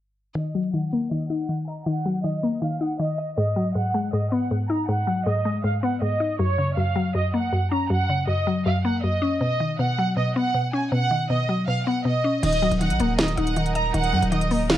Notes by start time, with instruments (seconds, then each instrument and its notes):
0.35 synth pluck D#3, violin section D#5
0.55 synth pluck F#3
0.73 synth pluck D#3, violin section F#5
0.93 synth pluck A#3
1.11 synth pluck D#3, violin section D#5
1.30 synth pluck D#4, violin section F#5
1.49 synth pluck D#3
1.68 synth pluck D#5, violin section A#5
1.86 synth pluck D#3, violin section F#5
2.06 synth pluck F#3
2.24 synth pluck D#3, violin section D#5
2.43 synth pluck A#3
2.62 synth pluck D#3, violin section F5
2.81 synth pluck D#4, violin section F#5
2.99 synth pluck D#3, violin section D#5
3.18 synth pluck D#5
3.37 synth pluck G#2, violin section D#5
3.56 synth pluck F#3
3.75 synth pluck G#2, violin section F#5
3.94 synth pluck G#3
4.13 synth pluck G#2, violin section D#5
4.32 synth pluck B3, violin section F#5
4.51 synth pluck G#2
4.69 synth pluck D#4, violin section A#5
4.88 synth pluck G#2, violin section F#5
5.07 synth pluck F#3
5.26 synth pluck G#2, violin section D#5
5.45 synth pluck G#3
5.64 synth pluck G#2, violin section F5
5.83 synth pluck B3, violin section F#5
6.02 synth pluck G#2, violin section D#5
6.20 synth pluck D#4
6.39 synth pluck F#2, violin section C#5
6.58 synth pluck C#3
6.77 synth pluck F#2, violin section F5
6.96 synth pluck F#3
7.15 synth pluck F#2, violin section D#5
7.34 synth pluck A#3, violin section F#5
7.52 synth pluck F#2
7.71 synth pluck C#4, violin section A#5
7.90 synth pluck F#2, violin section F#5
8.09 synth pluck C#3
8.27 synth pluck F#2, violin section D#5
8.47 synth pluck F#3
8.66 synth pluck F#2, violin section F5
8.85 synth pluck A#3, violin section F#5
9.03 synth pluck F#2, violin section D#5
9.22 synth pluck C#4
9.41 synth pluck B2, violin section D#5
9.60 synth pluck D#3
9.79 synth pluck B2, violin section F#5
9.99 synth pluck F#3
10.17 synth pluck B2, violin section D#5
10.36 synth pluck B3, violin section F#5
10.54 synth pluck B2
10.73 synth pluck C#4, violin section G#5
10.92 synth pluck B2, violin section F#5
11.11 synth pluck D#3
11.30 synth pluck B2, violin section D#5
11.49 synth pluck F#3
11.68 synth pluck B2, violin section F5
11.87 synth pluck B3, violin section F#5
12.05 synth pluck B2, violin section D#5
12.24 synth pluck C#4
12.43 808-style bass D#1, synth pluck D#3, string section F#3 D#4 A#4 D#5, violin section D#5, closed hi-hat, crash
12.53 closed hi-hat
12.62 synth pluck F#3
12.71 808-style bass D#1, closed hi-hat
12.81 synth pluck D#3, violin section F#5, closed hi-hat
12.90 808-style bass A#1, closed hi-hat
13.00 808-style bass D#1, synth pluck A#3, closed hi-hat
13.19 synth pluck D#3, violin section D#5, snare, closed hi-hat
13.28 closed hi-hat
13.37 808-style bass D#1, synth pluck D#4, violin section F#5, closed hi-hat
13.47 closed hi-hat
13.56 synth pluck D#3, closed hi-hat
13.66 closed hi-hat
13.75 synth pluck D#5, violin section A#5, closed hi-hat
13.94 808-style bass D#1, synth pluck D#3, violin section F#5, closed hi-hat
14.04 closed hi-hat
14.13 808-style bass F#2, synth pluck F#3
14.22 808-style bass D#1, closed hi-hat
14.32 synth pluck D#3, violin section D#5, closed hi-hat
14.41 closed hi-hat
14.51 synth pluck A#3, open hi-hat
14.69 synth pluck D#3, violin section F5, snare, closed hi-hat